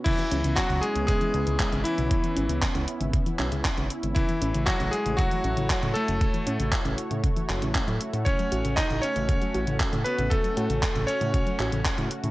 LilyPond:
<<
  \new Staff \with { instrumentName = "Electric grand piano" } { \time 4/4 \key cis \minor \tempo 4 = 117 <e e'>4 <fis fis'>8 <gis gis'>8 <gis gis'>4. <e e'>8~ | <e e'>4 r2. | <e e'>4 <fis fis'>8 <gis gis'>8 <fis fis'>4. <a a'>8~ | <a a'>4 r2. |
<cis' cis''>4 <dis' dis''>8 <cis' cis''>4. r8 <b b'>8 | <a a'>4. <cis' cis''>2 r8 | }
  \new Staff \with { instrumentName = "Analog synth pad" } { \time 4/4 \key cis \minor << { <b cis' e'>1~ | <b cis' e'>1 | <fis' cis''>1~ | <fis' cis''>1 |
cis'1~ | cis'1 | } \\ { r1 | r1 | a1~ | a1~ |
a1~ | a1 | } >> }
  \new Staff \with { instrumentName = "Synth arpeggio sound" } { \clef bass \time 4/4 \key cis \minor cis16 e16 cis'16 cis16 r16 cis16 r16 cis16 cis16 e16 cis'16 cis16 r16 cis16 r16 cis16 | cis16 e16 cis'16 cis16 r16 cis16 r16 cis16 cis16 e16 cis'16 cis16 r16 cis16 r16 cis16 | cis16 e16 cis'16 cis16 r16 cis16 r16 cis16 cis16 e16 cis'16 cis16 r16 cis16 r16 cis16 | cis16 e16 cis'16 cis16 r16 cis16 r16 cis16 cis16 e16 r16 cis16 cis'16 fis16 r16 e'16 |
cis16 fis16 fis'16 cis16 r16 cis16 r16 cis16 cis16 fis16 fis'16 cis16 r16 cis16 r16 cis16 | cis16 fis16 fis'16 cis16 r16 cis16 r16 cis16 cis16 fis16 fis'16 cis16 r16 cis16 r16 cis16 | }
  \new Staff \with { instrumentName = "Analog synth bass" } { \clef bass \time 4/4 \key cis \minor r8 cis,16 cis,16 r16 cis,16 r16 cis,16 r8 cis,16 cis,16 r16 gis,,16 r16 b,,16 | r8 gis,,16 cis,16 r16 cis,16 r16 gis,,16 r8 b,,16 cis,16 r16 gis,,16 r16 gis,,16 | r8 a,,16 a,,16 r16 a,,16 r16 a,,16 r8 a,,16 a,,16 r16 a,16 r16 fis,,16 | r8 a,16 a,,16 r16 a,,16 r16 a,16 r8 fis,,16 a,,16 r16 a,16 r16 a,16 |
r8 a,,16 a,,16 r16 a,,16 r16 a,,16 r8 a,,16 a,,16 r16 a,16 r16 a,,16 | r8 a,16 a,,16 r16 a,,16 r16 a,16 r8 a,,16 a,,16 r16 a,16 r16 a,16 | }
  \new DrumStaff \with { instrumentName = "Drums" } \drummode { \time 4/4 <cymc hh bd>16 hh16 hh16 hh16 <hc hh bd>16 hh16 hh16 hh16 <hh bd>16 hh16 hh16 hh16 <hc hh bd>16 hh16 hh16 hh16 | <hh bd>16 hh16 hh16 hh16 <hc hh bd>16 hh16 hh16 hh16 <hh bd>16 hh16 <hc hh>16 hh16 <hc hh bd>16 hh16 hh16 hh16 | <hh bd>16 hh16 hh16 hh16 <hc hh bd>16 hh16 hh16 hh16 <hh bd>16 hh16 hh16 hh16 <hc hh bd>16 hh16 hh16 hh16 | <hh bd>16 hh16 hh16 hh16 <hc hh bd>16 hh16 hh16 hh16 <hh bd>16 hh16 <hc hh>16 hh16 <hc hh bd>16 hh16 hh16 hh16 |
<hh bd>16 hh16 hh16 hh16 <hc hh bd>16 hh16 hh16 hh16 <hh bd>16 hh16 hh16 hh16 <hc hh bd>16 hh16 hh16 hh16 | <hh bd>16 hh16 hh16 hh16 <hc hh bd>16 hh16 hh16 hh16 <hh bd>16 hh16 <hc hh>16 hh16 <hc hh bd>16 hh16 hh16 hh16 | }
>>